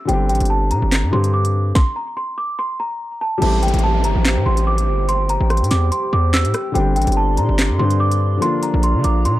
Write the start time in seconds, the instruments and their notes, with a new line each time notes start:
0.05 808-style bass G1, felt piano D3 G3 C4, celesta G5, closed hi-hat
0.11 felt piano D4 G4
0.29 808-style bass A1, celesta G5, closed hi-hat
0.35 closed hi-hat
0.40 808-style bass G1, closed hi-hat
0.45 closed hi-hat
0.50 celesta A5
0.71 808-style bass A#2, celesta A#5, closed hi-hat
0.82 808-style bass G1
0.92 snare, clap, closed hi-hat
1.03 808-style bass G2
1.11 808-style bass G2, felt piano D3 G3 C4 D4, celesta C6
1.15 felt piano G4
1.24 closed hi-hat
1.34 celesta D6
1.45 closed hi-hat
1.75 celesta C6, kick, snare
1.96 celesta A#5
2.17 celesta C6
2.38 celesta D6
2.59 celesta C6
2.80 celesta A#5
3.21 celesta A5
3.38 808-style bass A1, felt piano G3 A3 C4, analog synth pad G4 G5, celesta A5, crash
3.42 felt piano E4 G4, analog synth pad C5, closed hi-hat, downlifter
3.63 celesta G5, closed hi-hat
3.68 closed hi-hat
3.74 808-style bass A1, closed hi-hat
3.79 closed hi-hat
3.84 celesta A5
4.04 808-style bass G1, celesta A#5, closed hi-hat
4.15 808-style bass A1
4.25 snare, clap, closed hi-hat
4.36 808-style bass A2
4.46 808-style bass A1, celesta C6
4.57 closed hi-hat
4.67 celesta D6
4.78 closed hi-hat
4.88 808-style bass G1
5.09 celesta C6, closed hi-hat
5.29 celesta A#5, closed hi-hat
5.40 808-style bass A1
5.50 celesta C6, cross-stick, closed hi-hat
5.57 closed hi-hat
5.61 808-style bass A2, closed hi-hat
5.71 808-style bass E2, celesta D6, snare, closed hi-hat
5.92 celesta C6, closed hi-hat
6.13 808-style bass E2, celesta D6
6.34 celesta E6, snare, clap
6.45 808-style bass A2, closed hi-hat
6.54 cross-stick, closed hi-hat
6.72 808-style bass G1, felt piano D3 G3 C4, analog synth pad D5 C6, celesta G5, closed hi-hat
6.78 felt piano D4 G4
6.96 808-style bass A1, celesta G5, closed hi-hat
7.02 closed hi-hat
7.07 808-style bass G1, closed hi-hat
7.12 closed hi-hat
7.17 celesta A5
7.37 808-style bass A#2, celesta A#5, closed hi-hat
7.49 808-style bass G1
7.59 snare, clap, closed hi-hat
7.70 808-style bass G2
7.78 808-style bass G2, felt piano D3 G3 C4 D4, celesta C6
7.82 felt piano G4
7.91 closed hi-hat
8.00 celesta D6
8.11 closed hi-hat
8.37 felt piano D3 F3
8.41 felt piano A#3 D4 F4, analog synth pad F4 A#5, celesta C6, closed hi-hat
8.63 celesta A#5, closed hi-hat
8.74 808-style bass A#1
8.83 celesta C6, closed hi-hat
8.95 808-style bass D3
9.04 808-style bass A#1, celesta D6, closed hi-hat
9.25 808-style bass A#2, celesta C6, closed hi-hat